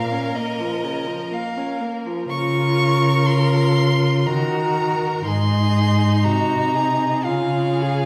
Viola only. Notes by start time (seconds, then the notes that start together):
Already playing: A#3
0.12 C#4
0.36 A#3
0.59 F3
0.84 C#3
1.07 F3
1.31 A#3
1.57 C#4
1.81 A#3
2.06 F3
2.29 F4
3.26 F4
4.27 F#4
5.27 D#4
7.26 F4
7.82 G#4